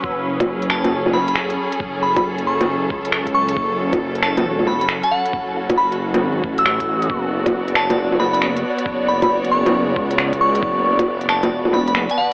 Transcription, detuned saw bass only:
X:1
M:4/4
L:1/16
Q:"Swing 16ths" 1/4=136
K:F#m
V:1 name="Detuned saw bass" clef=bass
F,,,12- F,,,2 z2 | F,,,8- F,,,2 C,,6 | F,,,8 E,,,3 F,,,2 z3 | F,,,8 G,,,2 A,,,6 |
F,,,12- F,,,2 z2 | F,,,8- F,,,2 C,,6 | F,,,8 E,,,3 F,,,2 z3 |]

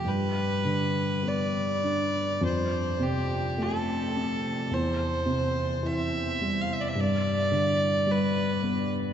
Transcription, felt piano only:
X:1
M:4/4
L:1/8
Q:1/4=53
K:Gmix
V:1 name="Felt piano" clef=bass
G,, D, B, D F,, C, A, C | E,, C, E, G, G,, D, G, B, |]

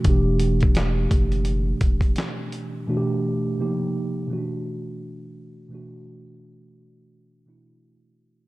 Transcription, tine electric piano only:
X:1
M:4/4
L:1/8
Q:"Swing 16ths" 1/4=85
K:Em
V:1 name="Tine electric piano"
[B,,E,A,DG]8 | [B,,E,A,DFG]2 [C,=F,_B,_EG]2 [=B,,=E,A,^CD^F]4 | [B,,E,A,DF]4- [B,,E,A,DF] [B,,E,A,DE]3 |]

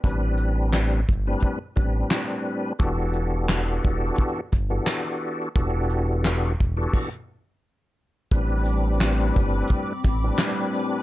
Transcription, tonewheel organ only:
X:1
M:4/4
L:1/16
Q:"Swing 16ths" 1/4=87
K:Ador
V:1 name="Tonewheel organ"
[A,,G,CDB]6 z [A,,G,CDB]2 z [A,,G,CDB]6 | [E,B,DFGA]8- [E,B,DFGA] z2 [E,B,DFGA]4- [E,B,DFGA] | [E,B,DFGA]6 z [E,B,DFGA]2 z6 z | [A,,G,CDB]8- [A,,G,CDB] z2 [A,,G,CDB]4- [A,,G,CDB] |]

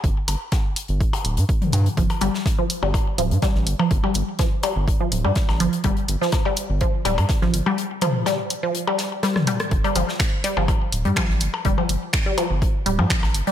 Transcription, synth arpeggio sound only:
X:1
M:4/4
L:1/16
Q:"Swing 16ths" 1/4=124
K:Cdor
V:1 name="Synth arpeggio sound" clef=bass
z16 | F, z G, z2 F, z G, z2 F, z G, z2 F, | z G, z2 F, z G, z2 F, z G, z2 F, z | G, z2 F, z G, z2 F, z G, z2 F, z G, |
z2 F, z G, z2 F, z G, z2 G, z G, z | z G, F, z3 G, F, z3 G, F, z3 | G, F, z3 G, F, z3 G, F, z3 G, |]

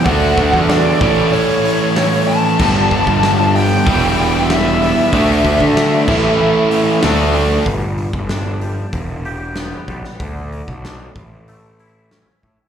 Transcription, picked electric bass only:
X:1
M:4/4
L:1/16
Q:1/4=95
K:Amix
V:1 name="Picked electric bass" clef=bass
D,,2 D,, E,,3 A,,,2 z8 | G,,,2 G,,, G,,,4- G,,, E,,,8 | D,,2 D,, D,3 A,,,2 z4 D,,4 | G,,,3 G,,,4- G,,, E,,,6 B,,, z |
D,,3 B,,,3 A,,,8 A,, z |]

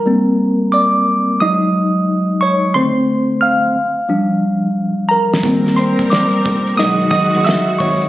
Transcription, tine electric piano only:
X:1
M:4/4
L:1/8
Q:"Swing 16ths" 1/4=89
K:Ablyd
V:1 name="Tine electric piano"
[Bb]2 [dd']2 [ee']3 [_d_d'] | [cc']2 [ff']4 z [Bb]- | [Bb] [cc'] [dd']2 [^d^d'] [dd'] [=e=e'] [_d_d'] |]
V:2 name="Tine electric piano" clef=bass
[G,B,C]4 [_G,A,E] z3 | [D,=A,C]3 z [F,G,D]3 z | [G,B,C]3 z [^F,^G,^D] z3 |]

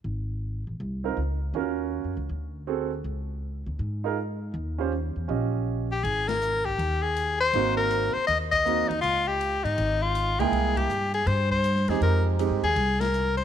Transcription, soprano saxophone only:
X:1
M:4/4
L:1/8
Q:"Swing" 1/4=160
K:Ab
V:1 name="Soprano saxophone"
z8 | z8 | z8 | z6 z G |
A B2 G2 A2 c- | c B2 c e e2 E | F G2 E2 F2 A- | A G2 A c c2 A |
B z2 A2 B2 c |]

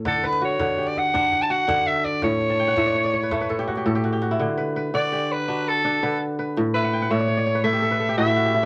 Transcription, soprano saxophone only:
X:1
M:12/8
L:1/16
Q:3/8=111
K:D
V:1 name="Soprano saxophone"
A2 B2 c4- c d f4- f a f4 e2 d2 | c16- c4 z4 | z6 d4 B4 A6 z4 | z2 B4 c6 e6 e6 |]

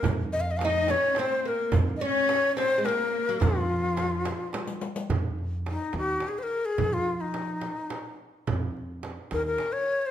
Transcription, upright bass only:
X:1
M:6/8
L:1/8
Q:3/8=71
K:none
V:1 name="Upright bass" clef=bass
F,,4 z2 | F,, z4 z | F,,4 z2 | F,,3 _E,, z2 |
F,4 z2 | F,,3 _E,, z2 |]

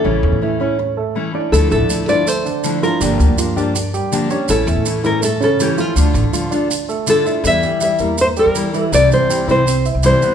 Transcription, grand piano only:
X:1
M:4/4
L:1/8
Q:1/4=162
K:Dm
V:1 name="Grand piano"
[^C,^C]2 [E,E] [C^c]2 [A,A]2 [Dd]- | [Dd] [A,A]2 [F,F] [A,A] [D,D]2 [F,F] | [D,D]2 [F,F] [Dd]2 [G,G]2 [^C^c]- | [^C^c] [A,A]2 [E,E] [A,A] [^C,C]2 [F,F] |
[D,D]2 [F,F] [Dd]2 [A,A]2 [Ee] | z [G,G]2 [B,B]2 [G,G]2 [E,E] | [E,E]2 [G,G]2 [Cc] [Ee]2 [=B,=B] |]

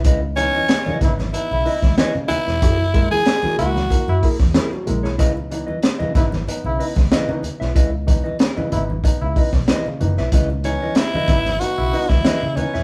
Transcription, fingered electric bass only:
X:1
M:4/4
L:1/16
Q:1/4=93
K:C#dor
V:1 name="Fingered electric bass" clef=bass
C,,3 z3 G,,,2 z B,,, z C,, z C, z E,,, | F,,,3 z3 C,,2 z F,, z E,, z2 A,,, B,,, | C,,3 z3 G,,,2 z B,,, z C,, z C, z B,,, | C,,3 z3 G,,,2 z C,, z B,,, z2 F,,, B,,, |
C,,3 z3 G,,,2 z B,,, z C,, z C, z E,,, |]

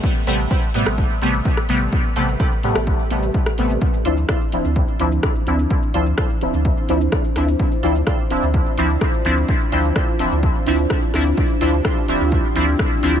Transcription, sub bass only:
X:1
M:4/4
L:1/16
Q:1/4=127
K:Dm
V:1 name="Sub bass" clef=bass
z2 A,,,2 z2 A,, A,,,2 z A,,,2 z2 A,,,2 | z2 A,,,2 z2 A,, A,,,2 z A,,,2 z2 A,,,2 | z2 D,,2 z2 D,,, D,,2 z D,,2 z2 D,,2 | z2 D,,2 z2 D,,, D,,2 z D,,2 z2 D,,2 |
z2 D,,2 z2 D,,, D,,2 z D,,2 z2 D,,2 | z2 D,,2 z2 D,,, D,,2 z D,,2 z2 D,,2 | z2 D,,2 z2 D,,, D,,2 z D,,2 z2 D,,2 |]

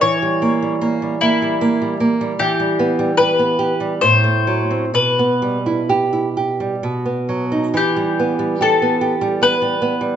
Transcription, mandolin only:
X:1
M:3/4
L:1/8
Q:1/4=74
K:Em
V:1 name="Mandolin"
^c3 E2 z | G2 B2 c2 | B4- B z | G2 A2 B2 |]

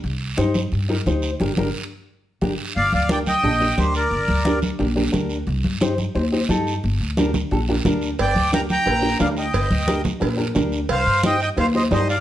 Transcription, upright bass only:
X:1
M:4/4
L:1/8
Q:1/4=177
K:Gm
V:1 name="Upright bass" clef=bass
C,,2 G,,2 G,,2 D,,2 | G,,, G,,, z4 G,,, z | G,,, D,,3 B,,,2 D,,2 | G,,, D,,3 B,,,2 D,,2 |
C,, G,,3 E,,2 G,,2 | G,,, D,,3 B,,,2 D,,2 | G,,, D,,3 B,,,2 D,,2 | G,,, D,,3 B,,,2 D,,2 |
C,, G,,3 E,,2 G,,2 |]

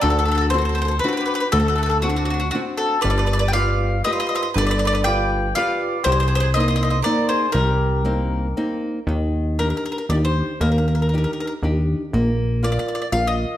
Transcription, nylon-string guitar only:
X:1
M:3/4
L:1/8
Q:"Swing" 1/4=119
K:Cm
V:1 name="Nylon-string guitar"
D,2 [CD^F]2 [CDF]2 | =A,2 [CD^F]2 [CDF]2 | G,2 [FG=B]2 [FGB]2 | D,2 [FG=B]2 [FGB]2 |
C,2 [B,CE]2 [B,CE]2 | G,2 [B,CE]2 [B,CE]2 | [K:Eb] E,2 [DEG]2 [DEG]2 | B,2 [DEG]2 [DEG]2 |
B,2 [FBd]2 [FBf]2 |]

